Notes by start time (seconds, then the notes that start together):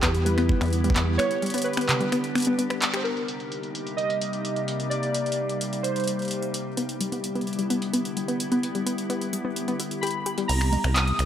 Already playing: D3 G3 B3 E4 G4
0.03 E2 B3, finger snap, kick, clap, closed hi-hat
0.14 closed hi-hat
0.25 G3 B4, closed hi-hat
0.38 B3, finger snap, closed hi-hat
0.49 kick
0.61 E2 B3, finger snap, closed hi-hat
0.63 closed hi-hat
0.66 closed hi-hat
0.68 closed hi-hat
0.70 closed hi-hat
0.73 closed hi-hat
0.84 G3, closed hi-hat
0.90 kick
0.96 E2 B3, finger snap, clap, closed hi-hat
1.18 B3 D4 C#5, finger snap, closed hi-hat
1.31 closed hi-hat
1.42 G3, closed hi-hat
1.46 closed hi-hat
1.50 closed hi-hat
1.54 B3, closed hi-hat
1.58 closed hi-hat
1.62 B4, closed hi-hat
1.66 closed hi-hat
1.73 finger snap, closed hi-hat
1.77 B3, closed hi-hat
1.81 closed hi-hat
1.89 clap, closed hi-hat, low conga
2.01 G3, closed hi-hat
2.12 B3, finger snap, closed hi-hat
2.24 closed hi-hat
2.35 B3, finger snap, closed hi-hat
2.38 closed hi-hat
2.40 closed hi-hat
2.42 closed hi-hat
2.45 B3, closed hi-hat
2.59 B3, closed hi-hat
2.70 B4, finger snap, closed hi-hat
2.82 clap, closed hi-hat
2.94 G4 C5, finger snap, closed hi-hat
3.04 C3 G3 A#3 D#4 G4 A#4, closed hi-hat
3.17 closed hi-hat
3.28 closed hi-hat
3.40 closed hi-hat
3.52 closed hi-hat
3.63 closed hi-hat
3.75 closed hi-hat
3.87 closed hi-hat
3.97 D#5, closed hi-hat
4.10 closed hi-hat
4.21 closed hi-hat
4.33 closed hi-hat
4.45 closed hi-hat
4.56 closed hi-hat
4.68 closed hi-hat
4.80 closed hi-hat
4.90 D5, closed hi-hat
5.03 closed hi-hat
5.14 closed hi-hat
5.26 closed hi-hat
5.32 closed hi-hat
5.49 closed hi-hat
5.61 closed hi-hat
5.73 closed hi-hat
5.83 C5, closed hi-hat
5.96 closed hi-hat
6.00 closed hi-hat
6.04 closed hi-hat
6.08 closed hi-hat
6.19 closed hi-hat
6.22 closed hi-hat
6.25 closed hi-hat
6.28 closed hi-hat
6.31 closed hi-hat
6.42 closed hi-hat
6.54 closed hi-hat
6.77 D3 B3 E4, closed hi-hat
6.89 closed hi-hat
7.01 G3, closed hi-hat
7.12 B3, closed hi-hat
7.24 closed hi-hat
7.35 B3, closed hi-hat
7.41 closed hi-hat
7.47 closed hi-hat
7.53 closed hi-hat
7.59 G3, closed hi-hat
7.70 B3, closed hi-hat
7.82 closed hi-hat
7.93 B3, closed hi-hat
8.05 closed hi-hat
8.17 G3, closed hi-hat
8.28 B3, closed hi-hat
8.40 closed hi-hat
8.52 B3, closed hi-hat
8.63 closed hi-hat
8.75 G3, closed hi-hat
8.86 B3, closed hi-hat
8.98 closed hi-hat
9.10 B3, closed hi-hat
9.21 closed hi-hat
9.33 G3, closed hi-hat
9.45 B3
9.56 closed hi-hat
9.68 B3, closed hi-hat
9.80 E4, closed hi-hat
9.91 closed hi-hat
10.01 G4 B5, closed hi-hat
10.07 closed hi-hat
10.11 closed hi-hat
10.26 G4, closed hi-hat
10.38 G3, closed hi-hat
10.48 C2 C3 G3 A#3 D#4 G4 A#5, closed hi-hat, crash
10.61 finger snap, closed hi-hat
10.73 closed hi-hat, low conga
10.84 C2, finger snap, closed hi-hat
10.94 D#6, clap, closed hi-hat
11.08 closed hi-hat
11.19 C2, finger snap, closed hi-hat